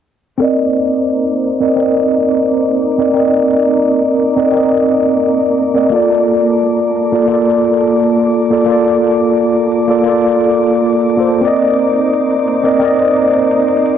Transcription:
0.38 string section A#3 D#4 C5 D6, tine electric piano C4 A#4, closed hi-hat
0.42 tine electric piano D5 D#5
0.58 closed hi-hat
0.75 closed hi-hat
0.93 closed hi-hat
1.10 closed hi-hat
1.27 closed hi-hat
1.36 closed hi-hat
1.45 closed hi-hat
1.60 tine electric piano C4 A#4 D5 D#5, closed hi-hat
1.76 tine electric piano C4 A#4 D5, closed hi-hat
1.82 tine electric piano D#5
1.96 closed hi-hat
2.13 closed hi-hat
2.31 closed hi-hat
2.48 closed hi-hat
2.65 closed hi-hat
2.74 closed hi-hat
2.82 closed hi-hat
2.98 tine electric piano C4 A#4 D5 D#5, closed hi-hat
3.14 tine electric piano C4 A#4 D5, string section A#4, closed hi-hat
3.20 tine electric piano D#5
3.34 closed hi-hat
3.51 closed hi-hat
3.69 closed hi-hat
3.86 closed hi-hat
4.03 closed hi-hat
4.12 closed hi-hat
4.20 closed hi-hat
4.36 tine electric piano C4 A#4 D5 D#5, closed hi-hat
4.52 tine electric piano C4 A#4, closed hi-hat
4.56 tine electric piano D5 D#5
4.72 closed hi-hat
4.89 closed hi-hat
5.07 closed hi-hat
5.24 closed hi-hat
5.41 closed hi-hat
5.50 closed hi-hat
5.58 closed hi-hat
5.74 tine electric piano C4 A#4 D5 D#5, closed hi-hat
5.90 tine electric piano A#3 F4 A4, string section A4 D6, closed hi-hat
5.96 tine electric piano D5
6.10 closed hi-hat
6.27 closed hi-hat
6.44 closed hi-hat
6.62 closed hi-hat
6.79 closed hi-hat
6.88 closed hi-hat
6.96 closed hi-hat
7.12 tine electric piano A#3 F4 A4 D5, closed hi-hat
7.28 tine electric piano A#3 F4, closed hi-hat
7.32 tine electric piano A4 D5
7.48 closed hi-hat
7.65 closed hi-hat
7.82 closed hi-hat
8.00 closed hi-hat
8.17 closed hi-hat
8.26 closed hi-hat
8.34 closed hi-hat
8.50 tine electric piano A#3 F4 A4 D5, closed hi-hat
8.66 tine electric piano A#3 F4, closed hi-hat
8.70 tine electric piano A4 D5
8.86 closed hi-hat
9.03 closed hi-hat
9.20 closed hi-hat
9.38 closed hi-hat
9.55 closed hi-hat
9.63 closed hi-hat
9.72 closed hi-hat
9.88 tine electric piano A#3 F4 A4 D5, closed hi-hat
10.03 tine electric piano A#3 F4 A4, closed hi-hat
10.09 tine electric piano D5
10.24 closed hi-hat
10.32 closed hi-hat
10.41 closed hi-hat
10.58 closed hi-hat
10.75 closed hi-hat
10.84 closed hi-hat
10.93 closed hi-hat
11.01 closed hi-hat
11.10 closed hi-hat
11.17 tine electric piano A#3 F4 A4 C5
11.27 closed hi-hat
11.41 string section A#3 D#4 C5, tine electric piano C4 A#4 D5, closed hi-hat
11.47 tine electric piano D#5
11.62 closed hi-hat
11.79 closed hi-hat
11.96 closed hi-hat
12.13 closed hi-hat
12.31 closed hi-hat
12.39 closed hi-hat
12.48 closed hi-hat
12.63 tine electric piano C4 A#4 D5 D#5, closed hi-hat
12.79 tine electric piano C4 A#4, closed hi-hat
12.83 tine electric piano D5 D#5
13.00 closed hi-hat
13.17 closed hi-hat
13.34 closed hi-hat
13.51 closed hi-hat
13.68 closed hi-hat
13.77 closed hi-hat
13.86 closed hi-hat

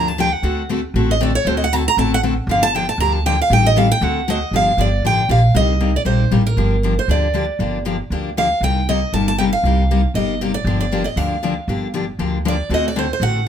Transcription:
Already playing: upright bass D2, steel-string acoustic guitar D3 F3 A#3 D4 G4
0.08 steel-string acoustic guitar A5
0.18 steel-string acoustic guitar D3 F3 A#3 D4 G4 G5
0.33 steel-string acoustic guitar F#5
0.43 upright bass D2, steel-string acoustic guitar D3 A3 C4 F#4 A4
0.69 steel-string acoustic guitar D3 A3 C4 F#4 A4
0.94 upright bass A1, steel-string acoustic guitar D3 A3 C4 F#4 A4
1.11 steel-string acoustic guitar D#5
1.20 steel-string acoustic guitar D3 A3 C4 F#4 A4 D5
1.35 steel-string acoustic guitar C#5
1.45 upright bass D2, steel-string acoustic guitar D3 A3 C4 F#4 A4 C5
1.57 steel-string acoustic guitar D#5
1.64 steel-string acoustic guitar F#5
1.72 steel-string acoustic guitar D3 A3 C4 F#4 A4 A5
1.88 steel-string acoustic guitar A#5
1.97 upright bass A1, steel-string acoustic guitar D3 A3 C4 F#4 A4 A5
2.14 steel-string acoustic guitar F#5
2.23 steel-string acoustic guitar D3 A3 C4 F#4 A4
2.47 upright bass G1, steel-string acoustic guitar D3 F3 A#3 D4 G4
2.51 steel-string acoustic guitar F5
2.63 steel-string acoustic guitar A5
2.75 steel-string acoustic guitar D3 F3 A#3 D4 G4 G5
2.89 steel-string acoustic guitar A5
2.98 upright bass D2, steel-string acoustic guitar D3 F3 A#3 D4 G4 A#5
3.13 steel-string acoustic guitar A5
3.26 steel-string acoustic guitar D3 F3 A#3 D4 G4 G5
3.42 steel-string acoustic guitar F5
3.50 upright bass A1, steel-string acoustic guitar D#3 G3 C4 G4 A4 G5
3.66 steel-string acoustic guitar D#5
3.76 steel-string acoustic guitar D#3 G3 C4 G4 A4 F5
3.92 steel-string acoustic guitar G5
4.01 upright bass D2, steel-string acoustic guitar D3 A3 C4 F#4 A4 F#5
4.28 steel-string acoustic guitar D3 A3 C4 F#4 A4 D#5
4.51 upright bass G1, steel-string acoustic guitar D3 F3 A#3 D4 G4
4.56 steel-string acoustic guitar F5
4.77 upright bass G1, steel-string acoustic guitar D3 F3 A#3 D4 G4 D5
5.02 upright bass A1, steel-string acoustic guitar D3 F3 A#3 D4 G4 G5
5.29 upright bass A#1, steel-string acoustic guitar D3 F3 A#3 D4 G4 F5
5.54 upright bass C2, steel-string acoustic guitar C3 G3 A#3 D#4 G4 D#5
5.80 steel-string acoustic guitar C3 G3 A#3 D#4 G4
5.96 steel-string acoustic guitar D5
6.05 upright bass A#1, steel-string acoustic guitar C3 G3 A#3 D#4 G4 C5
6.31 upright bass A1, steel-string acoustic guitar C3 G3 A#3 D#4 G4
6.47 steel-string acoustic guitar A#4
6.57 upright bass G1, steel-string acoustic guitar D3 F3 A#3 D4 G4
6.83 steel-string acoustic guitar D3 F3 A#3 D4 G4
6.99 steel-string acoustic guitar C5
7.08 upright bass D2, steel-string acoustic guitar D3 F3 A#3 D4 G4 D5
7.34 steel-string acoustic guitar D3 F3 A#3 D4 G4
7.59 upright bass G1, steel-string acoustic guitar D3 F3 A#3 D4 G4
7.85 steel-string acoustic guitar D3 F3 A#3 D4 G4
8.10 upright bass D2, steel-string acoustic guitar D3 F3 A#3 D4 G4
8.37 steel-string acoustic guitar D3 F3 A#3 D4 G4 F5
8.61 upright bass C2, steel-string acoustic guitar C3 G3 A#3 D#4 G4 G5
8.89 steel-string acoustic guitar C3 G3 A#3 D#4 G4 D#5
9.13 upright bass G1, steel-string acoustic guitar C3 G3 A#3 D#4 G4 A5
9.28 steel-string acoustic guitar A5
9.38 steel-string acoustic guitar C3 G3 A#3 D#4 G4 G5
9.53 steel-string acoustic guitar F5
9.63 upright bass C2, steel-string acoustic guitar C3 G3 A#3 D#4 G4
9.91 steel-string acoustic guitar C3 G3 A#3 D#4 G4
10.14 upright bass G1, steel-string acoustic guitar C3 G3 A#3 D#4 G4 D#5
10.41 steel-string acoustic guitar C3 G3 A#3 D#4 G4
10.54 steel-string acoustic guitar D5
10.64 upright bass G1, steel-string acoustic guitar D3 F3 A#3 D4 G4
10.81 steel-string acoustic guitar D5
10.92 steel-string acoustic guitar D3 F3 A#3 D4 G4
11.04 steel-string acoustic guitar D5 D#5
11.16 upright bass D2, steel-string acoustic guitar D3 F3 A#3 D4 G4 F5
11.43 steel-string acoustic guitar D3 F3 A#3 D4 G4
11.68 upright bass G1, steel-string acoustic guitar D3 F3 A#3 D4 G4
11.94 steel-string acoustic guitar D3 F3 A#3 D4 G4
12.19 upright bass D2, steel-string acoustic guitar D3 F3 A#3 D4 G4
12.45 steel-string acoustic guitar D3 F3 A#3 D4 G4 D5
12.69 upright bass D2, steel-string acoustic guitar D3 A3 C4 F#4 A4
12.74 steel-string acoustic guitar D#5
12.88 steel-string acoustic guitar D5
12.96 steel-string acoustic guitar D3 A3 C4 F#4 A4 C5
13.13 steel-string acoustic guitar C5
13.20 upright bass A1, steel-string acoustic guitar D3 A3 C4 F#4 A4 F#5

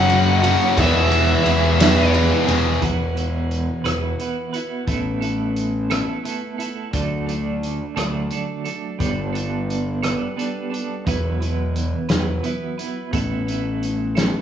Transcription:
Already playing: fingered electric bass F#1, distorted electric guitar F#2 C#3 F#3 A#3 C#4 F#4, lead electric guitar F#5
0.09 overdriven electric guitar F#3 A#3 C#4 F#4, ride
0.42 distorted electric guitar F#2 C#3 F#3, overdriven electric guitar A#3 C#4 F#4, ride
0.77 fingered electric bass E1, distorted electric guitar E2 B2 E3 G#4, overdriven electric guitar E3 G#3 B3 E4, lead electric guitar E5, kick, ride
1.11 overdriven electric guitar G#3 B3 E4, ride
1.44 fingered electric bass E2, distorted electric guitar E3 B3 E4 G#4, ride
1.78 overdriven electric guitar E3 G#3 B3 E4, distorted electric guitar G#4, snare, ride
2.14 overdriven electric guitar E3 G#3 B3 E4, ride
2.47 fingered electric bass E1, distorted electric guitar E2 B2 E3 G#4, overdriven electric guitar G#3 B3 E4, ride
2.82 fingered electric bass E1, clean electric guitar E3 B3 E4 F#4 B4, kick, closed hi-hat
3.16 clean electric guitar E4 F#4 B4, closed hi-hat
3.51 closed hi-hat
3.84 fingered electric bass E1, clean electric guitar E3 B3 E4 F#4 B4, cross-stick, closed hi-hat
4.19 clean electric guitar B3 E4 F#4 B4, closed hi-hat
4.53 clean electric guitar E4 F#4 B4, closed hi-hat
4.87 fingered electric bass A1, clean electric guitar A3 B3 E4 A4, kick, closed hi-hat
5.21 clean electric guitar B3 E4 A4, closed hi-hat
5.56 closed hi-hat
5.90 clean electric guitar A3 B3 E4 A4, cross-stick, closed hi-hat
6.24 clean electric guitar A3 B3 E4 A4, closed hi-hat
6.58 clean electric guitar B3 E4 A4, closed hi-hat
6.93 fingered electric bass D2, clean electric guitar D3 F#3 A3 D4 A4, kick, closed hi-hat
7.27 clean electric guitar A3 D4 A4, closed hi-hat
7.63 closed hi-hat
7.96 fingered electric bass D2, clean electric guitar D3 F#3 A3 D4 A4, cross-stick, closed hi-hat
8.30 clean electric guitar F#3 A3 D4 A4, closed hi-hat
8.65 clean electric guitar A3 D4 A4, closed hi-hat
8.99 fingered electric bass G1, clean electric guitar G3 B3 D4 A4, kick, closed hi-hat
9.33 clean electric guitar B3 D4 A4, closed hi-hat
9.70 closed hi-hat
10.03 clean electric guitar G3 B3 D4 A4, cross-stick, closed hi-hat
10.36 clean electric guitar G3 B3 D4 A4, closed hi-hat
10.70 clean electric guitar B3 D4 A4, closed hi-hat
11.06 fingered electric bass E1, clean electric guitar E3 F#3 B3 E4 B4, kick, closed hi-hat
11.40 clean electric guitar B3 E4 B4, closed hi-hat
11.76 closed hi-hat
12.09 fingered electric bass E1, clean electric guitar E3 F#3 B3 E4 B4, snare, closed hi-hat
12.43 clean electric guitar F#3 B3 E4 B4, closed hi-hat
12.78 clean electric guitar B3 E4 B4, closed hi-hat
13.13 fingered electric bass A1, clean electric guitar A3 B3 E4 A4, kick, closed hi-hat
13.47 clean electric guitar B3 E4 A4, closed hi-hat
13.83 closed hi-hat
14.15 clean electric guitar A3 B3 E4 A4, snare, closed hi-hat

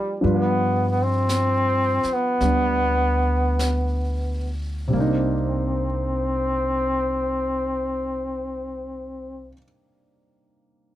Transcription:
Already playing: grand piano F3 G3 A#3 C#4 D#4, trombone G3
0.21 upright bass G2, grand piano F3 G3 D4 B4, brush sweep
0.26 grand piano F4
0.34 trombone B3
0.89 trombone B3
1.03 trombone C4
1.29 snare, hi-hat pedal
2.03 muted upright bass stroke, snare
2.13 trombone B3
2.41 upright bass D2, grand piano G3 B3 D4, brush sweep, snare
3.59 snare, hi-hat pedal
4.88 grand piano C3 G3
4.93 upright bass C2, grand piano A#3 D4
4.98 trombone C4, grand piano D#4

